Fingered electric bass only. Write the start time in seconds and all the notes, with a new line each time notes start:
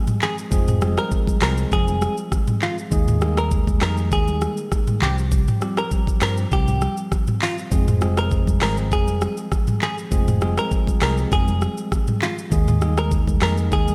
0.52 F1
1.42 C2
1.72 F1
2.92 D#2
3.82 F2
4.12 D#2
5.02 C2
6.22 G2
6.52 C2
7.72 F1
8.62 G#1
8.92 F1
10.12 F1
11.02 C2
11.32 F1
12.52 D#2
13.42 F2
13.72 D#2